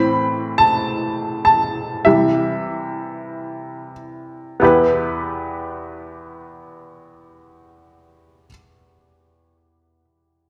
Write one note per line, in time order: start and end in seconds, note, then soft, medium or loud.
0.00 1.42 A2 soft
0.00 1.42 E3 soft
0.00 1.43 C4 soft
0.00 0.62 B5 medium
0.58 1.43 A5 medium
1.45 1.58 A5 medium
2.05 4.58 C3 soft
2.05 4.58 E3 soft
2.05 4.58 G3 soft
2.05 3.90 E5 medium
4.60 8.48 E2 soft
4.60 8.45 B3 soft
4.60 8.47 E4 soft
4.60 8.48 G4 soft
4.65 8.50 B4 medium